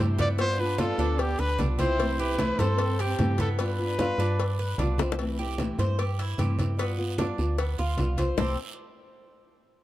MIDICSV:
0, 0, Header, 1, 8, 480
1, 0, Start_track
1, 0, Key_signature, 0, "major"
1, 0, Tempo, 399467
1, 472, Time_signature, 4, 2, 24, 8
1, 11820, End_track
2, 0, Start_track
2, 0, Title_t, "Trumpet"
2, 0, Program_c, 0, 56
2, 249, Note_on_c, 0, 74, 99
2, 353, Note_off_c, 0, 74, 0
2, 485, Note_on_c, 0, 72, 116
2, 721, Note_on_c, 0, 71, 98
2, 739, Note_off_c, 0, 72, 0
2, 957, Note_off_c, 0, 71, 0
2, 965, Note_on_c, 0, 69, 92
2, 1433, Note_on_c, 0, 67, 97
2, 1451, Note_off_c, 0, 69, 0
2, 1679, Note_on_c, 0, 71, 101
2, 1697, Note_off_c, 0, 67, 0
2, 1916, Note_off_c, 0, 71, 0
2, 2165, Note_on_c, 0, 72, 94
2, 2644, Note_on_c, 0, 71, 102
2, 2662, Note_off_c, 0, 72, 0
2, 3117, Note_on_c, 0, 69, 99
2, 3135, Note_off_c, 0, 71, 0
2, 3610, Note_on_c, 0, 67, 99
2, 3628, Note_off_c, 0, 69, 0
2, 4082, Note_off_c, 0, 67, 0
2, 4096, Note_on_c, 0, 69, 84
2, 4199, Note_off_c, 0, 69, 0
2, 4324, Note_on_c, 0, 71, 109
2, 5711, Note_off_c, 0, 71, 0
2, 11820, End_track
3, 0, Start_track
3, 0, Title_t, "Cuban tres"
3, 0, Program_c, 1, 25
3, 0, Note_on_c, 1, 67, 76
3, 214, Note_off_c, 1, 67, 0
3, 222, Note_on_c, 1, 59, 89
3, 448, Note_off_c, 1, 59, 0
3, 462, Note_on_c, 1, 59, 81
3, 933, Note_off_c, 1, 59, 0
3, 942, Note_on_c, 1, 65, 75
3, 1180, Note_off_c, 1, 65, 0
3, 1190, Note_on_c, 1, 62, 93
3, 1657, Note_off_c, 1, 62, 0
3, 1666, Note_on_c, 1, 71, 84
3, 1902, Note_off_c, 1, 71, 0
3, 1905, Note_on_c, 1, 62, 72
3, 2142, Note_off_c, 1, 62, 0
3, 2147, Note_on_c, 1, 60, 90
3, 2616, Note_off_c, 1, 60, 0
3, 2636, Note_on_c, 1, 67, 84
3, 2868, Note_off_c, 1, 67, 0
3, 2876, Note_on_c, 1, 64, 74
3, 3108, Note_off_c, 1, 64, 0
3, 3124, Note_on_c, 1, 72, 88
3, 3585, Note_off_c, 1, 72, 0
3, 3602, Note_on_c, 1, 67, 83
3, 4064, Note_off_c, 1, 67, 0
3, 4083, Note_on_c, 1, 59, 90
3, 4309, Note_off_c, 1, 59, 0
3, 4324, Note_on_c, 1, 59, 80
3, 4785, Note_off_c, 1, 59, 0
3, 4807, Note_on_c, 1, 65, 73
3, 5034, Note_off_c, 1, 65, 0
3, 5043, Note_on_c, 1, 62, 94
3, 5504, Note_off_c, 1, 62, 0
3, 5515, Note_on_c, 1, 71, 84
3, 5748, Note_off_c, 1, 71, 0
3, 5756, Note_on_c, 1, 62, 69
3, 5988, Note_off_c, 1, 62, 0
3, 6001, Note_on_c, 1, 60, 75
3, 6231, Note_off_c, 1, 60, 0
3, 6474, Note_on_c, 1, 67, 79
3, 6940, Note_off_c, 1, 67, 0
3, 6960, Note_on_c, 1, 72, 85
3, 7190, Note_off_c, 1, 72, 0
3, 7198, Note_on_c, 1, 67, 73
3, 7429, Note_off_c, 1, 67, 0
3, 7440, Note_on_c, 1, 64, 82
3, 7670, Note_off_c, 1, 64, 0
3, 7681, Note_on_c, 1, 67, 72
3, 8143, Note_off_c, 1, 67, 0
3, 8162, Note_on_c, 1, 59, 91
3, 8623, Note_off_c, 1, 59, 0
3, 8634, Note_on_c, 1, 62, 80
3, 9099, Note_off_c, 1, 62, 0
3, 9112, Note_on_c, 1, 59, 83
3, 9345, Note_off_c, 1, 59, 0
3, 9356, Note_on_c, 1, 65, 80
3, 9820, Note_off_c, 1, 65, 0
3, 9836, Note_on_c, 1, 72, 75
3, 10064, Note_on_c, 1, 60, 89
3, 10067, Note_off_c, 1, 72, 0
3, 10071, Note_on_c, 1, 67, 77
3, 10076, Note_on_c, 1, 69, 96
3, 10291, Note_off_c, 1, 60, 0
3, 10295, Note_off_c, 1, 67, 0
3, 10297, Note_off_c, 1, 69, 0
3, 11820, End_track
4, 0, Start_track
4, 0, Title_t, "Violin section"
4, 0, Program_c, 2, 48
4, 226, Note_on_c, 2, 65, 84
4, 335, Note_off_c, 2, 65, 0
4, 462, Note_on_c, 2, 65, 76
4, 690, Note_off_c, 2, 65, 0
4, 700, Note_on_c, 2, 62, 90
4, 934, Note_off_c, 2, 62, 0
4, 948, Note_on_c, 2, 62, 92
4, 1397, Note_off_c, 2, 62, 0
4, 1418, Note_on_c, 2, 59, 87
4, 1658, Note_on_c, 2, 62, 76
4, 1666, Note_off_c, 2, 59, 0
4, 1906, Note_off_c, 2, 62, 0
4, 2147, Note_on_c, 2, 64, 85
4, 2597, Note_off_c, 2, 64, 0
4, 2620, Note_on_c, 2, 64, 82
4, 3104, Note_on_c, 2, 60, 84
4, 3107, Note_off_c, 2, 64, 0
4, 3575, Note_off_c, 2, 60, 0
4, 3590, Note_on_c, 2, 60, 90
4, 4067, Note_off_c, 2, 60, 0
4, 4082, Note_on_c, 2, 60, 72
4, 4188, Note_off_c, 2, 60, 0
4, 4313, Note_on_c, 2, 62, 70
4, 5706, Note_off_c, 2, 62, 0
4, 11820, End_track
5, 0, Start_track
5, 0, Title_t, "Nylon-string guitar"
5, 0, Program_c, 3, 24
5, 0, Note_on_c, 3, 48, 77
5, 0, Note_on_c, 3, 52, 70
5, 0, Note_on_c, 3, 57, 78
5, 0, Note_on_c, 3, 60, 78
5, 9, Note_on_c, 3, 64, 75
5, 208, Note_off_c, 3, 64, 0
5, 218, Note_off_c, 3, 48, 0
5, 221, Note_off_c, 3, 52, 0
5, 222, Note_on_c, 3, 64, 51
5, 223, Note_off_c, 3, 60, 0
5, 226, Note_off_c, 3, 57, 0
5, 237, Note_on_c, 3, 60, 52
5, 243, Note_on_c, 3, 57, 47
5, 458, Note_off_c, 3, 64, 0
5, 460, Note_off_c, 3, 57, 0
5, 464, Note_on_c, 3, 55, 82
5, 465, Note_off_c, 3, 60, 0
5, 476, Note_on_c, 3, 59, 80
5, 487, Note_on_c, 3, 65, 80
5, 691, Note_off_c, 3, 65, 0
5, 699, Note_off_c, 3, 55, 0
5, 704, Note_off_c, 3, 59, 0
5, 705, Note_on_c, 3, 65, 60
5, 728, Note_on_c, 3, 59, 47
5, 932, Note_off_c, 3, 59, 0
5, 937, Note_on_c, 3, 55, 85
5, 939, Note_off_c, 3, 65, 0
5, 947, Note_on_c, 3, 59, 80
5, 957, Note_on_c, 3, 65, 77
5, 1173, Note_off_c, 3, 65, 0
5, 1175, Note_off_c, 3, 55, 0
5, 1180, Note_off_c, 3, 59, 0
5, 1187, Note_on_c, 3, 65, 58
5, 1211, Note_on_c, 3, 59, 40
5, 1408, Note_off_c, 3, 59, 0
5, 1420, Note_off_c, 3, 65, 0
5, 1911, Note_on_c, 3, 55, 75
5, 1916, Note_on_c, 3, 59, 80
5, 1927, Note_on_c, 3, 65, 80
5, 2135, Note_off_c, 3, 65, 0
5, 2142, Note_off_c, 3, 55, 0
5, 2145, Note_off_c, 3, 59, 0
5, 2150, Note_on_c, 3, 65, 54
5, 2174, Note_on_c, 3, 59, 50
5, 2382, Note_off_c, 3, 65, 0
5, 2392, Note_on_c, 3, 48, 84
5, 2394, Note_off_c, 3, 59, 0
5, 2397, Note_on_c, 3, 52, 79
5, 2404, Note_on_c, 3, 57, 78
5, 2409, Note_on_c, 3, 60, 86
5, 2418, Note_on_c, 3, 64, 93
5, 2614, Note_off_c, 3, 64, 0
5, 2623, Note_off_c, 3, 48, 0
5, 2626, Note_off_c, 3, 52, 0
5, 2629, Note_off_c, 3, 57, 0
5, 2629, Note_on_c, 3, 64, 53
5, 2632, Note_off_c, 3, 60, 0
5, 2647, Note_on_c, 3, 60, 55
5, 2655, Note_on_c, 3, 57, 45
5, 2862, Note_off_c, 3, 64, 0
5, 2869, Note_on_c, 3, 48, 87
5, 2870, Note_off_c, 3, 57, 0
5, 2871, Note_off_c, 3, 60, 0
5, 2878, Note_on_c, 3, 52, 76
5, 2884, Note_on_c, 3, 60, 81
5, 2885, Note_on_c, 3, 57, 76
5, 2890, Note_on_c, 3, 64, 86
5, 3097, Note_off_c, 3, 64, 0
5, 3102, Note_off_c, 3, 48, 0
5, 3106, Note_off_c, 3, 52, 0
5, 3110, Note_off_c, 3, 57, 0
5, 3110, Note_off_c, 3, 60, 0
5, 3112, Note_on_c, 3, 64, 52
5, 3125, Note_on_c, 3, 60, 48
5, 3135, Note_on_c, 3, 57, 43
5, 3343, Note_off_c, 3, 57, 0
5, 3343, Note_off_c, 3, 64, 0
5, 3350, Note_off_c, 3, 60, 0
5, 3830, Note_on_c, 3, 48, 72
5, 3832, Note_on_c, 3, 52, 75
5, 3841, Note_on_c, 3, 57, 82
5, 3844, Note_on_c, 3, 60, 90
5, 3853, Note_on_c, 3, 64, 82
5, 4044, Note_off_c, 3, 64, 0
5, 4052, Note_off_c, 3, 60, 0
5, 4059, Note_on_c, 3, 64, 56
5, 4062, Note_off_c, 3, 48, 0
5, 4062, Note_off_c, 3, 57, 0
5, 4064, Note_off_c, 3, 52, 0
5, 4066, Note_on_c, 3, 60, 48
5, 4076, Note_on_c, 3, 57, 45
5, 4297, Note_off_c, 3, 64, 0
5, 4301, Note_off_c, 3, 60, 0
5, 4306, Note_off_c, 3, 57, 0
5, 4313, Note_on_c, 3, 55, 77
5, 4327, Note_on_c, 3, 59, 73
5, 4329, Note_on_c, 3, 65, 87
5, 4538, Note_off_c, 3, 65, 0
5, 4544, Note_off_c, 3, 55, 0
5, 4551, Note_off_c, 3, 59, 0
5, 4553, Note_on_c, 3, 65, 54
5, 4582, Note_on_c, 3, 59, 42
5, 4784, Note_off_c, 3, 65, 0
5, 4785, Note_on_c, 3, 55, 79
5, 4786, Note_off_c, 3, 59, 0
5, 4800, Note_on_c, 3, 59, 90
5, 4812, Note_on_c, 3, 65, 94
5, 5016, Note_off_c, 3, 65, 0
5, 5020, Note_off_c, 3, 55, 0
5, 5028, Note_off_c, 3, 59, 0
5, 5031, Note_on_c, 3, 65, 57
5, 5048, Note_on_c, 3, 59, 41
5, 5263, Note_off_c, 3, 65, 0
5, 5268, Note_off_c, 3, 59, 0
5, 5758, Note_on_c, 3, 55, 77
5, 5769, Note_on_c, 3, 59, 77
5, 5782, Note_on_c, 3, 65, 85
5, 5985, Note_off_c, 3, 65, 0
5, 5986, Note_off_c, 3, 55, 0
5, 5992, Note_off_c, 3, 59, 0
5, 5999, Note_on_c, 3, 65, 49
5, 6023, Note_on_c, 3, 59, 44
5, 6227, Note_off_c, 3, 65, 0
5, 6235, Note_on_c, 3, 48, 68
5, 6239, Note_off_c, 3, 59, 0
5, 6242, Note_on_c, 3, 52, 75
5, 6250, Note_on_c, 3, 57, 91
5, 6254, Note_on_c, 3, 60, 85
5, 6256, Note_on_c, 3, 64, 72
5, 6465, Note_off_c, 3, 48, 0
5, 6465, Note_off_c, 3, 64, 0
5, 6468, Note_off_c, 3, 52, 0
5, 6473, Note_off_c, 3, 57, 0
5, 6474, Note_off_c, 3, 60, 0
5, 6479, Note_on_c, 3, 64, 51
5, 6494, Note_on_c, 3, 60, 45
5, 6505, Note_on_c, 3, 57, 46
5, 6707, Note_off_c, 3, 64, 0
5, 6710, Note_off_c, 3, 57, 0
5, 6713, Note_on_c, 3, 48, 85
5, 6714, Note_off_c, 3, 60, 0
5, 6722, Note_on_c, 3, 52, 81
5, 6725, Note_on_c, 3, 57, 82
5, 6733, Note_on_c, 3, 60, 80
5, 6734, Note_on_c, 3, 64, 95
5, 6944, Note_off_c, 3, 48, 0
5, 6948, Note_off_c, 3, 52, 0
5, 6948, Note_off_c, 3, 64, 0
5, 6950, Note_off_c, 3, 57, 0
5, 6954, Note_off_c, 3, 60, 0
5, 6962, Note_on_c, 3, 64, 58
5, 6974, Note_on_c, 3, 60, 51
5, 6986, Note_on_c, 3, 57, 47
5, 7188, Note_off_c, 3, 64, 0
5, 7194, Note_off_c, 3, 60, 0
5, 7197, Note_off_c, 3, 57, 0
5, 7672, Note_on_c, 3, 48, 88
5, 7679, Note_on_c, 3, 52, 83
5, 7686, Note_on_c, 3, 57, 66
5, 7688, Note_on_c, 3, 60, 83
5, 7696, Note_on_c, 3, 64, 84
5, 7899, Note_off_c, 3, 64, 0
5, 7903, Note_off_c, 3, 48, 0
5, 7907, Note_off_c, 3, 52, 0
5, 7911, Note_off_c, 3, 57, 0
5, 7911, Note_off_c, 3, 60, 0
5, 7914, Note_on_c, 3, 64, 54
5, 7925, Note_on_c, 3, 60, 48
5, 7932, Note_on_c, 3, 57, 43
5, 8132, Note_off_c, 3, 57, 0
5, 8137, Note_on_c, 3, 55, 80
5, 8144, Note_off_c, 3, 64, 0
5, 8148, Note_off_c, 3, 60, 0
5, 8153, Note_on_c, 3, 59, 74
5, 8166, Note_on_c, 3, 65, 81
5, 8367, Note_off_c, 3, 65, 0
5, 8376, Note_off_c, 3, 55, 0
5, 8381, Note_on_c, 3, 65, 64
5, 8383, Note_off_c, 3, 59, 0
5, 8407, Note_on_c, 3, 59, 44
5, 8618, Note_off_c, 3, 65, 0
5, 8622, Note_off_c, 3, 59, 0
5, 8622, Note_on_c, 3, 55, 80
5, 8637, Note_on_c, 3, 59, 71
5, 8646, Note_on_c, 3, 65, 84
5, 8854, Note_off_c, 3, 65, 0
5, 8858, Note_off_c, 3, 55, 0
5, 8866, Note_off_c, 3, 59, 0
5, 8869, Note_on_c, 3, 65, 51
5, 8896, Note_on_c, 3, 59, 43
5, 9101, Note_off_c, 3, 65, 0
5, 9105, Note_off_c, 3, 59, 0
5, 9582, Note_on_c, 3, 55, 61
5, 9597, Note_on_c, 3, 59, 76
5, 9605, Note_on_c, 3, 65, 79
5, 9812, Note_off_c, 3, 65, 0
5, 9818, Note_off_c, 3, 55, 0
5, 9825, Note_off_c, 3, 59, 0
5, 9826, Note_on_c, 3, 65, 58
5, 9846, Note_on_c, 3, 59, 40
5, 10055, Note_on_c, 3, 48, 80
5, 10060, Note_off_c, 3, 65, 0
5, 10064, Note_on_c, 3, 52, 78
5, 10065, Note_on_c, 3, 57, 78
5, 10069, Note_off_c, 3, 59, 0
5, 10074, Note_on_c, 3, 60, 91
5, 10079, Note_on_c, 3, 64, 87
5, 10256, Note_off_c, 3, 48, 0
5, 10260, Note_off_c, 3, 52, 0
5, 10261, Note_off_c, 3, 57, 0
5, 10265, Note_off_c, 3, 60, 0
5, 10268, Note_off_c, 3, 64, 0
5, 11820, End_track
6, 0, Start_track
6, 0, Title_t, "FM bass"
6, 0, Program_c, 4, 39
6, 0, Note_on_c, 4, 43, 110
6, 1118, Note_off_c, 4, 43, 0
6, 1184, Note_on_c, 4, 38, 100
6, 1635, Note_off_c, 4, 38, 0
6, 1674, Note_on_c, 4, 38, 82
6, 1897, Note_off_c, 4, 38, 0
6, 1915, Note_on_c, 4, 36, 102
6, 3043, Note_off_c, 4, 36, 0
6, 3119, Note_on_c, 4, 43, 108
6, 3788, Note_off_c, 4, 43, 0
6, 3838, Note_on_c, 4, 43, 96
6, 4964, Note_off_c, 4, 43, 0
6, 5026, Note_on_c, 4, 43, 99
6, 5702, Note_off_c, 4, 43, 0
6, 5749, Note_on_c, 4, 36, 104
6, 6879, Note_off_c, 4, 36, 0
6, 6954, Note_on_c, 4, 43, 96
6, 7626, Note_off_c, 4, 43, 0
6, 7676, Note_on_c, 4, 43, 91
6, 8802, Note_off_c, 4, 43, 0
6, 8877, Note_on_c, 4, 38, 112
6, 9321, Note_off_c, 4, 38, 0
6, 9360, Note_on_c, 4, 38, 85
6, 9580, Note_off_c, 4, 38, 0
6, 9591, Note_on_c, 4, 36, 98
6, 10016, Note_off_c, 4, 36, 0
6, 10069, Note_on_c, 4, 36, 91
6, 10294, Note_off_c, 4, 36, 0
6, 11820, End_track
7, 0, Start_track
7, 0, Title_t, "Muted nylon-string guitar strokes"
7, 1420, Note_on_c, 9, 29, 65
7, 1540, Note_off_c, 9, 29, 0
7, 3351, Note_on_c, 9, 29, 62
7, 3472, Note_off_c, 9, 29, 0
7, 5281, Note_on_c, 9, 29, 51
7, 5401, Note_off_c, 9, 29, 0
7, 7203, Note_on_c, 9, 29, 56
7, 7323, Note_off_c, 9, 29, 0
7, 9115, Note_on_c, 9, 29, 65
7, 9235, Note_off_c, 9, 29, 0
7, 11820, End_track
8, 0, Start_track
8, 0, Title_t, "Drums"
8, 221, Note_on_c, 9, 73, 67
8, 225, Note_on_c, 9, 63, 98
8, 230, Note_on_c, 9, 56, 72
8, 341, Note_off_c, 9, 73, 0
8, 346, Note_off_c, 9, 63, 0
8, 350, Note_off_c, 9, 56, 0
8, 460, Note_on_c, 9, 74, 83
8, 462, Note_on_c, 9, 63, 30
8, 466, Note_on_c, 9, 56, 111
8, 580, Note_off_c, 9, 74, 0
8, 582, Note_off_c, 9, 63, 0
8, 586, Note_off_c, 9, 56, 0
8, 699, Note_on_c, 9, 63, 34
8, 820, Note_off_c, 9, 63, 0
8, 942, Note_on_c, 9, 63, 102
8, 943, Note_on_c, 9, 73, 83
8, 949, Note_on_c, 9, 56, 71
8, 1062, Note_off_c, 9, 63, 0
8, 1064, Note_off_c, 9, 73, 0
8, 1069, Note_off_c, 9, 56, 0
8, 1179, Note_on_c, 9, 63, 33
8, 1179, Note_on_c, 9, 73, 76
8, 1300, Note_off_c, 9, 63, 0
8, 1300, Note_off_c, 9, 73, 0
8, 1421, Note_on_c, 9, 63, 39
8, 1421, Note_on_c, 9, 74, 72
8, 1431, Note_on_c, 9, 56, 102
8, 1541, Note_off_c, 9, 74, 0
8, 1542, Note_off_c, 9, 63, 0
8, 1552, Note_off_c, 9, 56, 0
8, 1664, Note_on_c, 9, 63, 36
8, 1784, Note_off_c, 9, 63, 0
8, 1909, Note_on_c, 9, 73, 75
8, 1910, Note_on_c, 9, 63, 100
8, 1920, Note_on_c, 9, 56, 61
8, 2029, Note_off_c, 9, 73, 0
8, 2030, Note_off_c, 9, 63, 0
8, 2040, Note_off_c, 9, 56, 0
8, 2148, Note_on_c, 9, 63, 86
8, 2153, Note_on_c, 9, 73, 78
8, 2156, Note_on_c, 9, 56, 66
8, 2268, Note_off_c, 9, 63, 0
8, 2273, Note_off_c, 9, 73, 0
8, 2276, Note_off_c, 9, 56, 0
8, 2395, Note_on_c, 9, 63, 28
8, 2399, Note_on_c, 9, 56, 104
8, 2399, Note_on_c, 9, 74, 79
8, 2515, Note_off_c, 9, 63, 0
8, 2519, Note_off_c, 9, 56, 0
8, 2519, Note_off_c, 9, 74, 0
8, 2632, Note_on_c, 9, 63, 37
8, 2752, Note_off_c, 9, 63, 0
8, 2866, Note_on_c, 9, 63, 97
8, 2875, Note_on_c, 9, 73, 80
8, 2879, Note_on_c, 9, 56, 67
8, 2986, Note_off_c, 9, 63, 0
8, 2995, Note_off_c, 9, 73, 0
8, 2999, Note_off_c, 9, 56, 0
8, 3109, Note_on_c, 9, 63, 35
8, 3109, Note_on_c, 9, 64, 91
8, 3112, Note_on_c, 9, 56, 75
8, 3122, Note_on_c, 9, 73, 79
8, 3229, Note_off_c, 9, 63, 0
8, 3229, Note_off_c, 9, 64, 0
8, 3232, Note_off_c, 9, 56, 0
8, 3243, Note_off_c, 9, 73, 0
8, 3346, Note_on_c, 9, 56, 121
8, 3354, Note_on_c, 9, 63, 39
8, 3359, Note_on_c, 9, 74, 89
8, 3466, Note_off_c, 9, 56, 0
8, 3474, Note_off_c, 9, 63, 0
8, 3479, Note_off_c, 9, 74, 0
8, 3594, Note_on_c, 9, 56, 77
8, 3594, Note_on_c, 9, 63, 33
8, 3714, Note_off_c, 9, 56, 0
8, 3714, Note_off_c, 9, 63, 0
8, 3828, Note_on_c, 9, 56, 69
8, 3832, Note_on_c, 9, 63, 91
8, 3832, Note_on_c, 9, 73, 72
8, 3948, Note_off_c, 9, 56, 0
8, 3952, Note_off_c, 9, 63, 0
8, 3952, Note_off_c, 9, 73, 0
8, 4062, Note_on_c, 9, 56, 74
8, 4071, Note_on_c, 9, 63, 90
8, 4072, Note_on_c, 9, 73, 75
8, 4182, Note_off_c, 9, 56, 0
8, 4191, Note_off_c, 9, 63, 0
8, 4192, Note_off_c, 9, 73, 0
8, 4310, Note_on_c, 9, 56, 114
8, 4311, Note_on_c, 9, 63, 28
8, 4314, Note_on_c, 9, 74, 84
8, 4430, Note_off_c, 9, 56, 0
8, 4431, Note_off_c, 9, 63, 0
8, 4435, Note_off_c, 9, 74, 0
8, 4551, Note_on_c, 9, 63, 36
8, 4671, Note_off_c, 9, 63, 0
8, 4792, Note_on_c, 9, 63, 110
8, 4794, Note_on_c, 9, 56, 69
8, 4800, Note_on_c, 9, 73, 75
8, 4912, Note_off_c, 9, 63, 0
8, 4914, Note_off_c, 9, 56, 0
8, 4920, Note_off_c, 9, 73, 0
8, 5037, Note_on_c, 9, 63, 38
8, 5042, Note_on_c, 9, 73, 74
8, 5157, Note_off_c, 9, 63, 0
8, 5162, Note_off_c, 9, 73, 0
8, 5277, Note_on_c, 9, 63, 36
8, 5282, Note_on_c, 9, 56, 102
8, 5282, Note_on_c, 9, 74, 79
8, 5397, Note_off_c, 9, 63, 0
8, 5402, Note_off_c, 9, 56, 0
8, 5402, Note_off_c, 9, 74, 0
8, 5514, Note_on_c, 9, 63, 36
8, 5634, Note_off_c, 9, 63, 0
8, 5746, Note_on_c, 9, 63, 92
8, 5755, Note_on_c, 9, 56, 71
8, 5759, Note_on_c, 9, 73, 81
8, 5866, Note_off_c, 9, 63, 0
8, 5875, Note_off_c, 9, 56, 0
8, 5880, Note_off_c, 9, 73, 0
8, 5987, Note_on_c, 9, 63, 87
8, 5993, Note_on_c, 9, 73, 72
8, 5999, Note_on_c, 9, 56, 74
8, 5999, Note_on_c, 9, 60, 103
8, 6107, Note_off_c, 9, 63, 0
8, 6113, Note_off_c, 9, 73, 0
8, 6120, Note_off_c, 9, 56, 0
8, 6120, Note_off_c, 9, 60, 0
8, 6152, Note_on_c, 9, 61, 101
8, 6233, Note_on_c, 9, 63, 28
8, 6234, Note_on_c, 9, 56, 114
8, 6239, Note_on_c, 9, 74, 75
8, 6272, Note_off_c, 9, 61, 0
8, 6353, Note_off_c, 9, 63, 0
8, 6354, Note_off_c, 9, 56, 0
8, 6359, Note_off_c, 9, 74, 0
8, 6474, Note_on_c, 9, 63, 37
8, 6594, Note_off_c, 9, 63, 0
8, 6709, Note_on_c, 9, 63, 94
8, 6713, Note_on_c, 9, 73, 80
8, 6724, Note_on_c, 9, 56, 69
8, 6829, Note_off_c, 9, 63, 0
8, 6833, Note_off_c, 9, 73, 0
8, 6844, Note_off_c, 9, 56, 0
8, 6952, Note_on_c, 9, 63, 37
8, 6952, Note_on_c, 9, 64, 86
8, 6952, Note_on_c, 9, 73, 79
8, 6961, Note_on_c, 9, 56, 68
8, 7072, Note_off_c, 9, 73, 0
8, 7073, Note_off_c, 9, 63, 0
8, 7073, Note_off_c, 9, 64, 0
8, 7081, Note_off_c, 9, 56, 0
8, 7193, Note_on_c, 9, 63, 39
8, 7195, Note_on_c, 9, 56, 119
8, 7196, Note_on_c, 9, 74, 72
8, 7313, Note_off_c, 9, 63, 0
8, 7315, Note_off_c, 9, 56, 0
8, 7316, Note_off_c, 9, 74, 0
8, 7433, Note_on_c, 9, 63, 34
8, 7439, Note_on_c, 9, 56, 73
8, 7553, Note_off_c, 9, 63, 0
8, 7559, Note_off_c, 9, 56, 0
8, 7668, Note_on_c, 9, 63, 91
8, 7675, Note_on_c, 9, 73, 84
8, 7677, Note_on_c, 9, 56, 75
8, 7788, Note_off_c, 9, 63, 0
8, 7795, Note_off_c, 9, 73, 0
8, 7797, Note_off_c, 9, 56, 0
8, 7914, Note_on_c, 9, 63, 97
8, 7914, Note_on_c, 9, 73, 81
8, 7923, Note_on_c, 9, 56, 66
8, 8034, Note_off_c, 9, 63, 0
8, 8034, Note_off_c, 9, 73, 0
8, 8043, Note_off_c, 9, 56, 0
8, 8153, Note_on_c, 9, 63, 34
8, 8155, Note_on_c, 9, 74, 82
8, 8163, Note_on_c, 9, 56, 127
8, 8274, Note_off_c, 9, 63, 0
8, 8275, Note_off_c, 9, 74, 0
8, 8283, Note_off_c, 9, 56, 0
8, 8388, Note_on_c, 9, 63, 38
8, 8508, Note_off_c, 9, 63, 0
8, 8632, Note_on_c, 9, 63, 105
8, 8638, Note_on_c, 9, 56, 73
8, 8640, Note_on_c, 9, 73, 88
8, 8752, Note_off_c, 9, 63, 0
8, 8758, Note_off_c, 9, 56, 0
8, 8760, Note_off_c, 9, 73, 0
8, 8870, Note_on_c, 9, 63, 36
8, 8872, Note_on_c, 9, 73, 78
8, 8990, Note_off_c, 9, 63, 0
8, 8992, Note_off_c, 9, 73, 0
8, 9110, Note_on_c, 9, 63, 36
8, 9113, Note_on_c, 9, 74, 80
8, 9114, Note_on_c, 9, 56, 114
8, 9230, Note_off_c, 9, 63, 0
8, 9233, Note_off_c, 9, 74, 0
8, 9234, Note_off_c, 9, 56, 0
8, 9347, Note_on_c, 9, 63, 35
8, 9467, Note_off_c, 9, 63, 0
8, 9583, Note_on_c, 9, 63, 93
8, 9585, Note_on_c, 9, 56, 60
8, 9592, Note_on_c, 9, 73, 78
8, 9703, Note_off_c, 9, 63, 0
8, 9705, Note_off_c, 9, 56, 0
8, 9712, Note_off_c, 9, 73, 0
8, 9823, Note_on_c, 9, 63, 93
8, 9828, Note_on_c, 9, 73, 72
8, 9829, Note_on_c, 9, 56, 78
8, 9943, Note_off_c, 9, 63, 0
8, 9949, Note_off_c, 9, 56, 0
8, 9949, Note_off_c, 9, 73, 0
8, 10066, Note_on_c, 9, 61, 112
8, 10066, Note_on_c, 9, 64, 80
8, 10068, Note_on_c, 9, 74, 121
8, 10186, Note_off_c, 9, 61, 0
8, 10186, Note_off_c, 9, 64, 0
8, 10188, Note_off_c, 9, 74, 0
8, 11820, End_track
0, 0, End_of_file